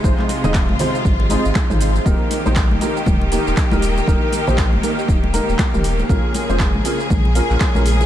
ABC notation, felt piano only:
X:1
M:4/4
L:1/16
Q:"Swing 16ths" 1/4=119
K:Ebmix
V:1 name="Felt piano"
[CEAc]3 [CEAe] z2 [CEAc] z3 [CEAe]3 [CEAc]3 | [B,EGB]3 [B,EGc] z2 [B,EGB] z3 [B,EGB]3 [B,EGB] z2 | [B,EGB]3 [B,EGc] z2 [B,EGB] z3 [B,EGB]3 [B,EGB] z2 | [DFAB]3 [DFAc] z2 [DFAB] z3 [DFAB]3 [DFAB] z2 |]